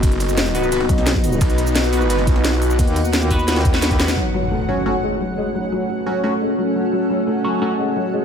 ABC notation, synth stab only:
X:1
M:4/4
L:1/16
Q:1/4=174
K:F#dor
V:1 name="Synth stab"
z6 [B,FB]2 [B,FB] z6 z | z6 [B,FB]2 [B,FB] z6 z | z6 [B,FB]2 [B,FB] z2 [B,FB]3 [B,FB] z | z6 [F,CF]2 [F,CF] z6 z |
z6 [F,CF]2 [F,CF] z6 z | z6 [F,CF]2 [F,CF] z6 z |]